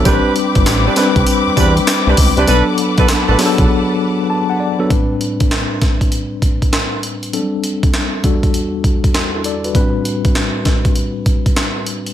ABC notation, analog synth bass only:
X:1
M:4/4
L:1/16
Q:"Swing 16ths" 1/4=99
K:Ador
V:1 name="Analog synth bass" clef=bass
A,,, z2 G,,, A,,,2 z C,, z E,, E,,2 z C,, ^C,, =C,, | B,,, z2 B,,, z A,,, z B,,, z8 | z16 | z16 |
z16 |]